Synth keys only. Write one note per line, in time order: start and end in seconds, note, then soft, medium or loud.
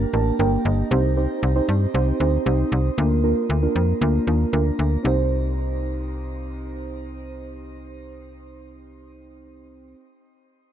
0.13 0.36 A#3 medium
0.13 0.36 D4 medium
0.13 0.36 G4 medium
0.13 0.36 A#4 medium
0.13 0.37 A5 medium
0.39 0.84 A#3 medium
0.39 0.84 D4 medium
0.39 0.84 G4 medium
0.39 0.84 A#4 medium
0.39 0.63 G5 medium
0.65 0.89 D#5 medium
0.91 1.13 C4 medium
0.91 1.13 D#4 medium
0.91 1.13 G4 medium
0.91 1.13 C5 medium
1.17 1.50 C4 medium
1.17 1.50 D#4 medium
1.17 1.50 G4 medium
1.17 1.50 C5 medium
1.56 1.89 C4 medium
1.56 1.89 D#4 medium
1.56 1.89 G4 medium
1.56 1.89 C5 medium
1.94 2.17 C4 medium
1.94 2.17 D#4 medium
1.94 2.17 G4 medium
1.94 2.17 C5 medium
2.20 2.43 C4 medium
2.20 2.43 D#4 medium
2.20 2.43 G4 medium
2.20 2.43 C5 medium
2.46 2.91 C4 medium
2.46 2.91 D#4 medium
2.46 2.91 G4 medium
2.46 2.91 C5 medium
2.98 3.20 A#3 medium
2.98 3.20 D4 medium
2.98 3.20 F4 medium
2.98 3.20 A#4 medium
3.24 3.57 A#3 medium
3.24 3.57 D4 medium
3.24 3.57 F4 medium
3.24 3.57 A#4 medium
3.63 3.96 A#3 medium
3.63 3.96 D4 medium
3.63 3.96 F4 medium
3.63 3.96 A#4 medium
4.01 4.24 A#3 medium
4.01 4.24 D4 medium
4.01 4.24 F4 medium
4.01 4.24 A#4 medium
4.27 4.50 A#3 medium
4.27 4.50 D4 medium
4.27 4.50 F4 medium
4.27 4.50 A#4 medium
4.53 4.98 A#3 medium
4.53 4.98 D4 medium
4.53 4.98 F4 medium
4.53 4.98 A#4 medium
5.03 9.95 C4 medium
5.03 9.97 D#4 medium
5.03 9.98 G4 medium
5.07 10.00 C5 medium